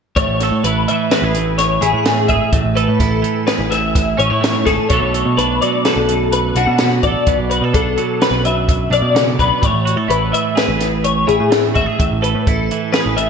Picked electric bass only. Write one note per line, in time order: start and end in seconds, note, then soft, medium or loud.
0.16 0.27 A1 medium
0.27 0.49 A1 medium
0.51 0.62 A2 medium
0.64 0.85 A1 medium
1.22 1.77 A1 medium
1.81 1.92 A1 medium
1.93 2.26 A2 medium
2.29 2.40 G#1 medium
2.52 2.63 A1 medium
2.64 2.86 A1 medium
2.88 2.99 A2 medium
3.00 3.22 A1 medium
3.59 4.14 A1 medium
4.19 4.29 A1 medium
4.31 4.63 A2 medium
4.66 4.77 G#1 medium
4.90 5.01 B1 medium
5.01 5.23 B1 medium
5.25 5.36 B2 medium
5.37 5.59 B1 medium
5.96 6.51 B1 medium
6.55 6.66 B1 medium
6.67 7.00 B2 medium
7.03 7.14 A1 medium
7.27 7.37 B1 medium
7.38 7.60 B1 medium
7.61 7.72 B2 medium
7.74 7.96 B1 medium
8.31 8.87 B1 medium
8.90 9.01 B1 medium
9.02 9.35 B2 medium
9.39 9.50 B1 medium
9.63 9.72 A1 medium
9.73 9.95 A1 medium
9.96 10.08 A2 medium
10.09 10.31 A1 medium
10.68 11.24 A1 medium
11.28 11.39 A1 medium
11.40 11.73 A2 medium
11.76 11.87 G#1 medium
11.99 12.10 A1 medium
12.12 12.33 A1 medium
12.35 12.46 A2 medium
12.47 12.69 A1 medium
13.06 13.30 A1 medium